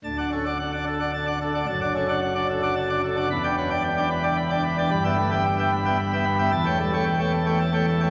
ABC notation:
X:1
M:3/4
L:1/16
Q:1/4=111
K:D
V:1 name="Pipe organ"
[D,,a] [Ddf] [CA] [Ddf] f [Ddf] A [Ddf] a [Ddf] A [Ddf] | [F,,a] [Ddf] [CA] [Ddf] f [Ddf] A [Ddf] a [Ddf] A [Ddf] | [E,,b] [Ddg] [CB] [Ddg] g [Ddg] B [Ddg] b [Ddg] B [Ddg] | [G,,b] [B,eg] [A,B] [B,eg] g [B,eg] B [B,eg] b [B,eg] B [B,eg] |
[E,,a] [A,cg] [G,A] [A,cg] g [A,cg] A [A,cg] a [A,cg] A [A,cg] |]
V:2 name="Pipe organ" clef=bass
D,,,12 | F,,,12 | E,,,12 | G,,,12 |
E,,,12 |]